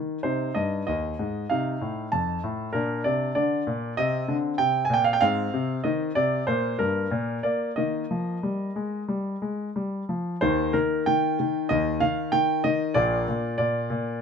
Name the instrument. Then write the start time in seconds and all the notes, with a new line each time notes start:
grand piano
Already playing: D#3 D#4
0.23 C3 D#4 C5
0.55 G2 D#5
0.87 D#2 D#5
1.19 G#2
1.50 C3 D#4 F5
1.81 A2
2.12 F2 A5
2.44 A2
2.73 A#2 D4 A#4
3.04 C3 D5
3.35 D3 D5
3.67 A#2
3.97 C3 C4 D#5
4.28 D3
4.58 C3 G5
4.85 G#5
4.90 A#2 G5
5.04 F5
5.13 G5
5.21 G#2 C4 F5
5.54 C3
5.84 D#3 D#5
6.15 C3 D5
6.47 A#2 A#3 C5
6.79 G2 A#4
7.11 A#2 A#3
7.43 A#3 D5
7.76 D#3 A#3 D#5
8.11 F3
8.43 G3
8.76 G#3
9.09 G3
9.42 G#3
9.76 G3
10.09 F3
10.41 D#2 D#3 A#3 D#4 C5
10.73 D#3 A#4
11.06 D#3 G5
11.40 D#3
11.69 D#2 D#3 D#5
12.00 D#3 F5
12.32 D#3 G5
12.64 D#3 D#5
12.94 A#1 A#2 A#3 F4 D5
13.28 A#2
13.58 A#2 D5
13.90 A#2